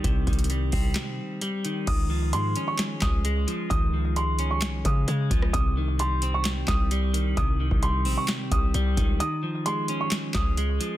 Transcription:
<<
  \new Staff \with { instrumentName = "Grand piano" } { \time 4/4 \key des \lydian \tempo 4 = 131 r1 | ees'''4 c'''8. des'''16 r8 ees'''4. | ees'''4 c'''8. des'''16 r8 ees'''4. | ees'''4 c'''8. des'''16 r8 ees'''4. |
ees'''4 c'''8. des'''16 r8 ees'''4. | ees'''4 c'''8. des'''16 r8 ees'''4. | }
  \new Staff \with { instrumentName = "Clean electric guitar" } { \clef bass \time 4/4 \key des \lydian <c ees g>8 ees8 g8 c'4. g8 ees8 | ees8 f8 aes8 des'4. aes8 f8 | ees8 f8 aes8 des'4. aes8 f8 | c8 ees8 g8 c'4. g8 ees8 |
c8 ees8 g8 c'4. g8 ees8 | ees8 f8 aes8 des'4. aes8 f8 | }
  \new Staff \with { instrumentName = "808-style bass" } { \clef bass \time 4/4 \key des \lydian c,8 c,4 c,8 r2 | des,4 aes,8 r4 des,4 r8 | des,2 c,8 des8 des8 des,8 | c,2~ c,8 c,4. |
c,8. c,8. bes,,16 r8. c,8 c,8 des,8 | r2 r8 des,4 r8 | }
  \new DrumStaff \with { instrumentName = "Drums" } \drummode { \time 4/4 <hh bd>8 <hh bd>32 hh32 hh32 hh32 hh8 <hho bd>8 <hc hh sn>4 hh8 hh8 | <cymc hh bd>4 hh8 hh8 <hc hh sn>8 <hc hh bd sn>8 hh8 hh8 | <hh bd>4 hh8 hh8 <hc hh sn>8 <hh bd>8 hh8 <hh bd>16 ss16 | <hh bd>4 hh8 hh8 <hc hh sn>8 <hc hh bd sn>8 hh8 hh8 |
<hh bd>8. bd16 hh8 hho8 <hc hh sn>8 <hh bd>8 hh8 <hh bd>8 | hh4 hh8 hh8 <hc hh sn>8 <hc hh bd sn>8 hh8 hh8 | }
>>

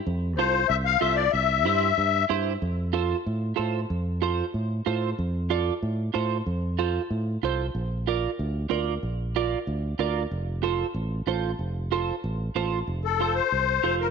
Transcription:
<<
  \new Staff \with { instrumentName = "Accordion" } { \time 4/4 \key f \major \tempo 4 = 187 r4 c''4 e''8 f''8 e''8 d''8 | e''2. r4 | r1 | r1 |
r1 | r1 | r1 | r1 |
r1 | r1 | r8 a'4 c''2 bes'8 | }
  \new Staff \with { instrumentName = "Clean electric guitar" } { \time 4/4 \key f \major r4 <f' a' c''>8 r4. <f' a' c''>8 r8 | r4 <e' g' c''>8 r4. <e' g' c''>8 r8 | r4 <f' a' c''>8 r4. <f' a' c''>8 r8 | r4 <f' a' c''>8 r4. <f' a' c''>8 r8 |
r4 <f' a' d''>8 r4. <f' a' c''>8 r8 | r4 <f' a' c''>8 r4. <f' a' c''>8 r8 | r4 <f' bes' d''>8 r4. <f' bes' d''>8 r8 | r4 <f' bes' d''>8 r4. <f' bes' d''>8 r8 |
r4 <f' a' c''>8 r4. <f' a' c''>8 r8 | r4 <f' a' c''>8 r4. <f' a' c''>8 r8 | r4 <f' a' c''>8 r4. <f' a' c''>8 r8 | }
  \new Staff \with { instrumentName = "Fingered electric bass" } { \clef bass \time 4/4 \key f \major f,4 c,4 c,4 c,4 | c,4 g,4 g,4 g,4 | f,2 a,4 a,4 | f,2 a,4 a,4 |
f,2 a,4 a,4 | f,2 a,4 c,4 | bes,,2 d,4 d,4 | bes,,2 d,4 d,4 |
f,,2 a,,4 a,,4 | f,,2 a,,4 a,,4 | f,,2 c,4 f,,4 | }
>>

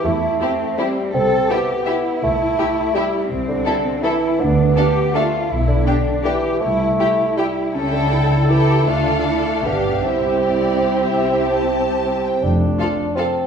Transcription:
<<
  \new Staff \with { instrumentName = "Violin section" } { \time 3/4 \key c \major \tempo 4 = 160 r4 c''4 c''4 | r4 e''4 e''4 | r4 e''4 e''4 | r4 e''4 e''4 |
r4 f''4 f''4 | r4 g''4 g''4 | r4 g''4 g''4 | g''2 g''4 |
f''2 f''4 | e''4 d''4. e''8~ | e''8 a''2 g''8 | \key f \major r4 f''4 f''4 | }
  \new Staff \with { instrumentName = "Violin section" } { \time 3/4 \key c \major r4 g'4 g'4 | r4 g'4 g'4 | r4 g'4 g'4 | r4 a'4 a'4 |
r4 a'4 a'4 | r4 g'4 g'4 | r4 g'4 g'4 | a'2 a'4 |
a'2 g'4 | g'2.~ | g'2~ g'8 r8 | \key f \major r4 a'4 a'4 | }
  \new Staff \with { instrumentName = "Cello section" } { \time 3/4 \key c \major e'4 c'2 | a'4 g'4 e'4~ | e'2. | c'2 e'4 |
d'4 g'4 f'4 | e'4 d'4 g'4 | e'4 e'2 | cis'4 a'4 g'4 |
f'4 e'4 d'4 | e'2.~ | e'2~ e'8 r8 | \key f \major f,4 r2 | }
  \new Staff \with { instrumentName = "Viola section" } { \time 3/4 \key c \major r4 e'4 e'4 | r4 e'4 e'4 | r4 e'4 e'4 | r4 e'4 e'4 |
r4 d'4 d'4 | r4 d'4 d'4 | r4 e'4 e'4 | e'2 e'4 |
d'2 d'4 | c'2.~ | c'2~ c'8 r8 | \key f \major r4 f'4 f'4 | }
  \new Staff \with { instrumentName = "Bassoon" } { \time 3/4 \key c \major a2 g4 | c'4 b2 | a2 g4 | r8 d4. e4 |
b2 a4 | r8 d4. e4 | a2 g4 | r8 d4. e4 |
a2 b4 | c'2.~ | c'2 c'4 | \key f \major d'2 c'4 | }
  \new Staff \with { instrumentName = "Double bass section" } { \clef bass \time 3/4 \key c \major e,4 r2 | c,4 r2 | c,4 r2 | c,4 r2 |
d,4 r2 | b,,4 r2 | c,4 r2 | cis,2. |
d,2 g,,4 | c,2.~ | c,2~ c,8 r8 | \key f \major f,,4 r2 | }
>>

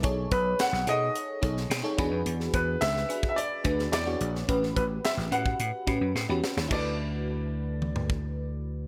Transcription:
<<
  \new Staff \with { instrumentName = "Grand piano" } { \time 4/4 \key d \major \tempo 4 = 108 r8 b'8 fis''8 dis''4. r4 | r8 b'8 e''8.~ e''32 e''32 d''4 d''8. r16 | r8 b'8 e''8 fis''2 r8 | d''1 | }
  \new Staff \with { instrumentName = "FM electric piano" } { \time 4/4 \key d \major <dis' gis' a' cis''>4~ <dis' gis' a' cis''>16 r16 <dis' gis' a' cis''>8. r16 <dis' gis' a' cis''>8. <dis' gis' a' cis''>16 <d' fis' gis' b'>8~ | <d' fis' gis' b'>4~ <d' fis' gis' b'>16 r16 <d' fis' gis' b'>8. r16 <d' fis' gis' b'>8. <d' fis' gis' cis''>8. | <cis' fis' g' b'>4~ <cis' fis' g' b'>16 r16 <cis' fis' g' b'>8. r16 <cis' fis' g' b'>8. <cis' fis' g' b'>8. | <e' fis' a' b'>1 | }
  \new Staff \with { instrumentName = "Slap bass" } { \clef bass \time 4/4 \key d \major b,,8 b,,8 r16 b,,16 b,8 r8 b,,8 b,16 r16 e,16 f,16 | e,8 e,8 cis,8 r4 d,8 e,8 bes,,8 | a,,8 a,,8 r16 a,,16 a,8 a,16 r16 a,16 fis,16 a,16 e,16 r16 ees,16 | d,1 | }
  \new DrumStaff \with { instrumentName = "Drums" } \drummode { \time 4/4 <hh bd>8 <hh bd>8 <hh sn>16 sn16 hh8 hh8 <hh bd>16 sn16 <hh sn>8 <hh bd>8 | hh16 sn16 <hh bd>8 <hh sn>16 sn16 hh16 bd16 hh8 <hh bd>16 sn16 <hh sn>8 hh16 sn16 | <hh bd>16 sn16 <hh bd>8 <hh sn>16 sn16 hh16 bd16 hh8 <hh bd>8 sn8 sn16 sn16 | <cymc bd>4 r4 toml16 tomfh16 bd8 r4 | }
>>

